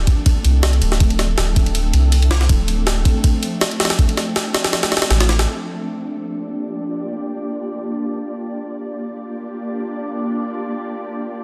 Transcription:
0.07 kick, ride
0.26 kick, ride
0.45 sub bass C2, ride
0.63 snare, ride
0.73 ride
0.82 sub bass D1, ride
0.92 snare
1.00 kick, ride
1.10 ride
1.19 snare, ride
1.38 sub bass D1, snare, ride
1.56 kick, ride
1.66 ride
1.75 ride
1.93 sub bass C2, ride
2.12 ride
2.22 ride
2.31 snare, ride
2.41 snare
2.49 sub bass D1, kick, ride
2.68 ride
2.87 snare, ride
3.05 kick, ride
3.24 kick, ride
3.43 ride
3.61 snare, ride
3.71 ride
3.80 snare, ride
3.85 snare, ride
3.90 snare, ride
3.99 kick, ride
4.09 ride
4.17 snare, ride
4.36 snare, ride
4.54 snare, ride
4.64 snare, ride
4.73 snare, ride
4.83 snare, ride
4.92 snare, ride
4.97 snare, ride
5.02 snare, ride
5.10 sub bass A1, snare, ride
5.21 snare, ride
5.29 snare, ride
5.39 snare, ride
5.47 ambient pad A#3 D4 F4 G4 D5
8.45 ambient pad A#3 D4 F4 G4 D5

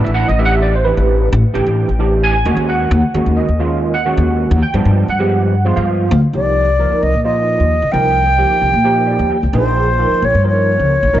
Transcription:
Already playing: tine electric piano E3 A3 D4 E4
0.04 upright bass A1, tine electric piano E5
0.14 tine electric piano F#5
0.28 upright bass A1, tine electric piano D#5
0.38 tine electric piano E3 A3 D4 G4 E5
0.45 tine electric piano F#5
0.54 tine electric piano E5
0.62 tine electric piano D5
0.75 tine electric piano C5
0.84 tine electric piano E3 A3 D4 G4 B4
0.97 upright bass A1
1.33 upright bass A1
1.53 upright bass A1, tine electric piano E3 A3 D4 G4 G5
1.66 upright bass A1
1.89 upright bass A1
1.99 tine electric piano E3 A3 D4 G4
2.23 tine electric piano G#5
2.45 upright bass D#2, tine electric piano D#3 G#3 C#4 F#4
2.57 upright bass D#2
2.69 tine electric piano F#5
2.91 upright bass D#2
3.14 upright bass D#2, tine electric piano D#3 G#3 C#4 F#4
3.26 upright bass D#2
3.37 tine electric piano D#5
3.49 upright bass D#2
3.59 tine electric piano D#3 G#3 C#4 F4
3.94 tine electric piano F#5
4.05 tine electric piano D#3 G#3 C#4 F#4
4.17 upright bass D#2
4.51 upright bass D#2
4.62 tine electric piano G5
4.74 upright bass G2, tine electric piano F3 G#3 B3 D4
4.85 upright bass G2
5.08 upright bass G2, tine electric piano F#5
5.19 tine electric piano F3 G#3 B3 G4
5.65 tine electric piano F3 G#3 B3 F4
5.76 upright bass G2, tine electric piano F5
6.11 upright bass D2
6.33 upright bass C2, tine electric piano F3 A#3 D#4 G4, flute D5
6.79 tine electric piano F3 A#3 D#4 A#4
6.91 muted upright bass stroke
7.03 upright bass C2, flute D#5
7.14 upright bass A#2
7.24 tine electric piano F3 A#3 D#4 F4, flute D#5
7.60 upright bass D#2
7.82 upright bass C2
7.92 upright bass C2, tine electric piano F3 A#3 D#4 A#4, flute G5
8.38 tine electric piano F3 A#3 D#4 G4
8.51 muted upright bass stroke
8.62 upright bass C2
8.73 upright bass A#2
8.84 tine electric piano F3 A#3 D#4 G4
9.07 tine electric piano D5
9.19 upright bass D#2
9.30 tine electric piano G5
9.43 upright bass C2
9.53 upright bass A#1, tine electric piano F3 A#3 D#4 G#4, flute C5
9.99 tine electric piano F3 A#3 D#4 A#4
10.11 muted upright bass stroke
10.22 upright bass A#1, flute C#5
10.35 upright bass G2
10.44 tine electric piano F3 A#3 D#4 A#4, flute C#5
10.79 upright bass C#2
11.03 upright bass A#1
11.13 upright bass A#1, tine electric piano F3 A#3 D#4 A#4

